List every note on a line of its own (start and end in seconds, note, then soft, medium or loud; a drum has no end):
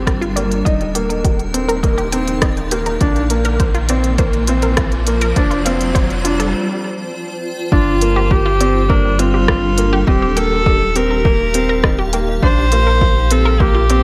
0.00 0.63 G1 medium
0.00 0.66 G3 medium
0.00 0.18 C4 medium
0.00 0.66 D4 medium
0.00 0.66 A4 medium
0.00 3.96 A#4 medium
0.00 riser medium
0.07 0.12 A#4 medium
0.07 kick loud
0.07 cross-stick medium
0.07 closed hi-hat soft
0.21 0.35 F4 loud
0.21 closed hi-hat soft
0.36 0.57 A#3 medium
0.36 0.42 D5 medium
0.36 closed hi-hat medium
0.52 closed hi-hat soft
0.65 2.98 D#1 medium
0.65 0.86 D#4 medium
0.65 3.02 D#4 medium
0.65 0.79 D#5 medium
0.65 kick medium
0.65 closed hi-hat soft
0.81 closed hi-hat soft
0.90 3.95 G5 medium
0.95 1.35 A#3 medium
0.95 1.04 G4 medium
0.95 closed hi-hat medium
1.09 1.23 A#4 medium
1.09 closed hi-hat soft
1.24 1.34 G4 medium
1.24 kick loud
1.24 closed hi-hat soft
1.39 closed hi-hat soft
1.54 1.74 C4 medium
1.54 3.95 F5 medium
1.54 closed hi-hat medium
1.68 1.74 A#4 loud
1.68 closed hi-hat soft
1.83 2.04 A#3 medium
1.83 1.89 D#5 medium
1.83 kick loud
1.83 closed hi-hat soft
1.98 2.11 G4 loud
1.98 closed hi-hat soft
2.12 2.53 C4 medium
2.12 2.18 G5 medium
2.12 closed hi-hat medium
2.28 closed hi-hat soft
2.42 2.56 D#5 medium
2.42 kick loud
2.42 cross-stick medium
2.42 closed hi-hat soft
2.57 closed hi-hat soft
2.71 2.92 A#3 medium
2.71 2.81 G4 medium
2.71 closed hi-hat medium
2.86 3.00 A#4 medium
2.86 closed hi-hat soft
3.01 5.34 A#1 medium
3.01 5.37 A#3 medium
3.01 3.21 D4 medium
3.01 3.10 F4 medium
3.01 kick loud
3.01 closed hi-hat soft
3.16 closed hi-hat soft
3.30 3.70 A#3 medium
3.30 closed hi-hat medium
3.45 3.51 A#4 loud
3.45 closed hi-hat soft
3.58 8.66 F4 medium
3.58 3.65 C5 medium
3.58 kick loud
3.58 closed hi-hat soft
3.70 8.66 C5 medium
3.75 3.88 F4 loud
3.75 closed hi-hat soft
3.89 4.09 C4 medium
3.89 3.95 D5 medium
3.89 closed hi-hat medium
4.04 6.31 D5 medium
4.04 closed hi-hat soft
4.18 4.39 A#3 medium
4.18 4.32 C5 medium
4.18 kick loud
4.18 closed hi-hat soft
4.33 closed hi-hat soft
4.47 4.89 C4 medium
4.47 4.57 F4 medium
4.47 closed hi-hat medium
4.62 4.76 A#4 medium
4.62 closed hi-hat soft
4.77 4.87 F4 medium
4.77 kick loud
4.77 cross-stick medium
4.77 closed hi-hat soft
4.92 closed hi-hat soft
5.07 5.27 A#3 medium
5.07 closed hi-hat medium
5.21 5.27 A#4 loud
5.21 closed hi-hat soft
5.36 6.54 F1 loud
5.36 5.57 D4 loud
5.36 5.42 C5 medium
5.36 kick loud
5.36 closed hi-hat soft
5.51 5.64 F4 medium
5.51 closed hi-hat soft
5.65 6.06 C4 medium
5.65 5.71 F5 medium
5.65 closed hi-hat medium
5.81 closed hi-hat soft
5.95 6.09 C5 medium
5.95 kick loud
5.95 closed hi-hat soft
6.10 closed hi-hat soft
6.25 6.45 D4 medium
6.25 6.34 F4 medium
6.25 closed hi-hat medium
6.40 6.53 A4 medium
6.40 8.66 G5 medium
6.40 8.66 A5 medium
6.40 closed hi-hat soft
7.72 10.04 G1 medium
7.72 10.07 G3 medium
7.72 7.92 D4 loud
7.72 8.32 F4 medium
7.72 7.81 F4 medium
7.72 kick loud
7.91 10.07 D4 medium
7.91 10.07 A4 medium
8.01 8.41 A#3 medium
8.01 closed hi-hat medium
8.16 8.21 G4 loud
8.31 8.91 G4 loud
8.31 8.36 A#4 medium
8.31 kick loud
8.46 8.59 F4 loud
8.60 8.80 C4 medium
8.60 13.37 G4 medium
8.60 8.66 D5 medium
8.60 closed hi-hat medium
8.89 9.10 A#3 medium
8.89 9.21 D4 medium
8.89 9.03 A#4 medium
8.89 kick loud
9.19 9.59 C4 medium
9.19 10.07 F4 loud
9.19 9.28 F4 medium
9.19 closed hi-hat medium
9.34 9.47 G4 medium
9.48 9.57 F4 medium
9.48 kick loud
9.48 cross-stick medium
9.78 9.98 A#3 medium
9.78 closed hi-hat medium
9.93 9.98 G4 loud
10.07 12.40 D#1 loud
10.07 10.27 C4 medium
10.07 12.43 D#4 medium
10.07 10.38 G4 loud
10.07 10.13 D#5 medium
10.07 kick loud
10.22 10.36 G4 medium
10.22 13.37 F5 medium
10.37 10.76 A#3 medium
10.37 10.97 A4 loud
10.37 10.42 G5 medium
10.37 closed hi-hat medium
10.66 10.80 D#5 medium
10.66 kick loud
10.96 11.16 C4 medium
10.96 11.05 G4 medium
10.96 12.13 A#4 loud
10.96 closed hi-hat medium
11.11 11.24 A#4 medium
11.15 13.37 G5 medium
11.25 11.45 A#3 medium
11.25 11.34 G4 medium
11.25 kick loud
11.54 11.95 C4 medium
11.54 closed hi-hat medium
11.69 11.74 A#4 loud
11.84 11.89 D#5 medium
11.84 kick loud
11.84 cross-stick medium
11.99 12.12 G4 loud
12.13 12.33 A#3 medium
12.13 12.19 G5 medium
12.13 closed hi-hat medium
12.42 14.03 A#1 medium
12.42 14.03 A#3 medium
12.42 12.63 D4 medium
12.42 13.33 C5 loud
12.42 12.56 C5 medium
12.42 kick loud
12.67 14.03 C5 medium
12.72 13.12 A#3 medium
12.72 12.81 F4 medium
12.72 closed hi-hat medium
12.87 14.03 F4 medium
12.87 13.00 A#4 medium
13.01 13.10 F4 medium
13.01 kick loud
13.31 13.51 C4 medium
13.31 13.62 A4 loud
13.31 closed hi-hat medium
13.45 13.51 A#4 loud
13.45 14.03 D5 medium
13.60 13.80 A#3 medium
13.60 14.03 G4 loud
13.60 13.65 C5 medium
13.60 kick loud
13.74 13.88 F4 loud
13.90 14.03 C4 medium
13.90 13.95 D5 medium
13.90 closed hi-hat medium